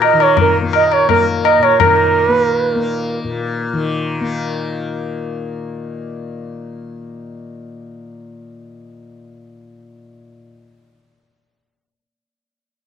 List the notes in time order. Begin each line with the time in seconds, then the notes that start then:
Already playing: A#2 D#3 A#3
0.02 D#5, tabla na
0.13 D#3
0.20 C#5, tabla na
0.37 A#4, tabla na, tabla ge
0.62 A#3
0.73 D#5, tabla na
0.87 D#5
0.92 C#5, tabla na
1.09 A#3 A#4, tabla na, tabla ge
1.45 D#5, tabla na
1.58 A#2
1.63 C#5, tabla na
1.80 D#3 A#4, tabla na, tabla ge
2.28 A#3 B4
2.43 A#4
2.57 B4
2.70 A#4
2.75 A#3
3.24 A#2
3.73 D#3
4.21 A#3